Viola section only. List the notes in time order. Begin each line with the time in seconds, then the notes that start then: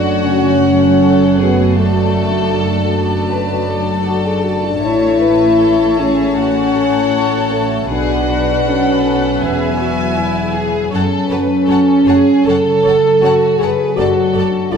Already playing: A3 F#4
4.82 A3 C#5
6.35 C#5
7.89 B4 F#5
9.42 E5
10.91 A4 C#5
11.31 A4 C#5
11.67 A4 C#5
12.07 A3 C#5
12.46 A4 C#5
12.83 A4 C#5
13.21 A4 C#5
13.59 A4 C#5
13.96 A4 D5
14.34 A4 D5
14.72 A4 D5